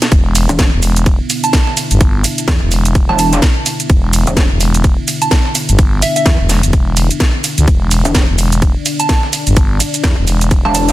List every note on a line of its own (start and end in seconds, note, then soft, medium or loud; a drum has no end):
0.00 10.92 B3 medium
0.00 0.11 B4 medium
0.00 snare medium
0.00 closed hi-hat medium
0.00 shaker soft
0.12 0.47 E1 loud
0.12 10.92 D4 medium
0.12 7.66 E5 medium
0.12 kick loud
0.12 closed hi-hat medium
0.12 ride medium
0.12 shaker soft
0.35 closed hi-hat medium
0.35 open hi-hat loud
0.35 ride medium
0.35 shaker medium
0.49 0.71 E1 loud
0.49 closed hi-hat soft
0.49 closed hi-hat medium
0.49 shaker soft
0.59 kick loud
0.59 snare loud
0.59 closed hi-hat medium
0.59 ride medium
0.59 shaker soft
0.73 1.18 E1 loud
0.83 closed hi-hat medium
0.83 open hi-hat loud
0.83 ride medium
0.83 shaker medium
0.96 closed hi-hat medium
0.96 shaker soft
1.06 kick loud
1.06 closed hi-hat medium
1.06 ride medium
1.06 shaker soft
1.30 closed hi-hat medium
1.30 open hi-hat loud
1.30 ride medium
1.30 shaker medium
1.44 1.50 A5 medium
1.44 closed hi-hat medium
1.44 shaker soft
1.53 1.62 A5 medium
1.53 kick loud
1.53 snare loud
1.53 closed hi-hat medium
1.53 open hi-hat medium
1.53 ride medium
1.53 shaker soft
1.67 snare medium
1.77 closed hi-hat medium
1.77 open hi-hat loud
1.77 ride medium
1.77 shaker medium
1.91 2.23 G1 loud
1.91 closed hi-hat medium
1.91 shaker soft
2.01 kick loud
2.01 closed hi-hat medium
2.01 ride medium
2.01 shaker soft
2.24 closed hi-hat medium
2.24 open hi-hat loud
2.24 ride medium
2.24 shaker medium
2.38 closed hi-hat medium
2.38 shaker soft
2.48 2.60 E2 loud
2.48 kick loud
2.48 snare loud
2.48 closed hi-hat medium
2.48 ride medium
2.62 3.07 E1 loud
2.72 closed hi-hat medium
2.72 open hi-hat loud
2.72 ride medium
2.72 shaker medium
2.85 closed hi-hat medium
2.85 shaker soft
2.95 kick loud
2.95 closed hi-hat medium
2.95 ride medium
2.95 shaker soft
3.09 3.41 E1 loud
3.09 3.15 A5 loud
3.19 3.28 A5 medium
3.19 closed hi-hat medium
3.19 open hi-hat loud
3.19 ride medium
3.19 shaker medium
3.33 closed hi-hat medium
3.33 shaker soft
3.42 kick loud
3.42 snare loud
3.42 closed hi-hat medium
3.42 ride medium
3.42 shaker soft
3.66 closed hi-hat medium
3.66 open hi-hat loud
3.66 ride medium
3.66 shaker medium
3.80 closed hi-hat medium
3.80 shaker soft
3.90 4.25 E1 loud
3.90 kick loud
3.90 closed hi-hat medium
3.90 ride medium
3.90 shaker soft
4.13 closed hi-hat medium
4.13 open hi-hat loud
4.13 ride medium
4.13 shaker medium
4.27 4.49 E1 loud
4.27 closed hi-hat medium
4.27 closed hi-hat soft
4.27 shaker soft
4.37 kick loud
4.37 snare loud
4.37 closed hi-hat medium
4.37 ride medium
4.37 shaker soft
4.51 4.96 E1 loud
4.61 closed hi-hat medium
4.61 open hi-hat loud
4.61 ride medium
4.61 shaker medium
4.74 closed hi-hat medium
4.74 shaker soft
4.84 kick loud
4.84 closed hi-hat medium
4.84 ride medium
4.84 shaker soft
5.08 closed hi-hat medium
5.08 open hi-hat loud
5.08 ride medium
5.08 shaker medium
5.22 5.28 A5 medium
5.22 closed hi-hat medium
5.22 shaker soft
5.31 5.40 A5 medium
5.31 kick loud
5.31 snare loud
5.31 closed hi-hat medium
5.31 open hi-hat medium
5.31 ride medium
5.31 shaker soft
5.45 snare soft
5.55 closed hi-hat medium
5.55 open hi-hat loud
5.55 ride medium
5.55 shaker medium
5.69 6.01 G1 loud
5.69 closed hi-hat medium
5.69 shaker soft
5.79 kick loud
5.79 closed hi-hat medium
5.79 ride medium
5.79 shaker soft
6.02 6.11 E5 medium
6.02 closed hi-hat medium
6.02 open hi-hat loud
6.02 ride medium
6.02 shaker medium
6.16 6.22 E5 medium
6.16 closed hi-hat medium
6.16 shaker soft
6.26 6.38 E2 loud
6.26 kick loud
6.26 snare loud
6.26 closed hi-hat medium
6.26 ride medium
6.26 shaker soft
6.40 6.61 E1 loud
6.49 snare medium
6.49 closed hi-hat medium
6.49 open hi-hat loud
6.49 ride medium
6.49 shaker medium
6.63 7.08 E1 medium
6.63 closed hi-hat medium
6.63 shaker soft
6.73 kick loud
6.73 closed hi-hat medium
6.73 ride medium
6.73 shaker soft
6.97 closed hi-hat medium
6.97 open hi-hat loud
6.97 ride medium
6.97 shaker medium
7.11 closed hi-hat medium
7.11 shaker soft
7.20 kick loud
7.20 snare loud
7.20 closed hi-hat medium
7.20 ride medium
7.20 shaker soft
7.44 closed hi-hat medium
7.44 open hi-hat loud
7.44 ride medium
7.44 shaker medium
7.58 7.66 D2 loud
7.58 closed hi-hat medium
7.58 shaker soft
7.68 8.03 E1 loud
7.68 10.92 D5 medium
7.68 kick loud
7.68 closed hi-hat medium
7.68 ride medium
7.68 shaker soft
7.91 closed hi-hat medium
7.91 open hi-hat loud
7.91 ride medium
7.91 shaker medium
8.05 8.27 E1 loud
8.05 closed hi-hat soft
8.05 closed hi-hat medium
8.05 shaker soft
8.15 kick loud
8.15 snare loud
8.15 closed hi-hat medium
8.15 ride medium
8.15 shaker soft
8.29 8.74 E1 loud
8.38 closed hi-hat medium
8.38 open hi-hat loud
8.38 ride medium
8.38 shaker medium
8.52 closed hi-hat medium
8.52 shaker soft
8.62 kick loud
8.62 closed hi-hat soft
8.62 closed hi-hat medium
8.62 ride medium
8.62 shaker soft
8.86 closed hi-hat medium
8.86 open hi-hat loud
8.86 ride medium
8.86 shaker medium
9.00 9.06 A5 medium
9.00 closed hi-hat medium
9.00 shaker soft
9.09 9.18 A5 medium
9.09 kick loud
9.09 snare loud
9.09 closed hi-hat medium
9.09 open hi-hat medium
9.09 ride medium
9.09 shaker soft
9.23 snare medium
9.33 closed hi-hat medium
9.33 open hi-hat loud
9.33 ride medium
9.33 shaker medium
9.47 9.79 G1 loud
9.47 closed hi-hat medium
9.47 shaker soft
9.57 kick loud
9.57 closed hi-hat medium
9.57 ride medium
9.57 shaker soft
9.80 closed hi-hat medium
9.80 open hi-hat loud
9.80 ride medium
9.80 shaker medium
9.94 closed hi-hat medium
9.94 shaker soft
10.04 10.16 E2 loud
10.04 kick loud
10.04 snare loud
10.04 closed hi-hat medium
10.04 ride medium
10.18 10.63 E1 loud
10.27 closed hi-hat medium
10.27 open hi-hat loud
10.27 ride medium
10.27 shaker medium
10.41 closed hi-hat medium
10.41 shaker soft
10.51 kick loud
10.51 closed hi-hat medium
10.51 ride medium
10.51 shaker soft
10.65 10.92 E1 loud
10.65 10.71 A5 medium
10.75 10.84 A5 medium
10.75 closed hi-hat medium
10.75 open hi-hat loud
10.75 ride medium
10.75 shaker medium
10.89 closed hi-hat medium
10.89 shaker soft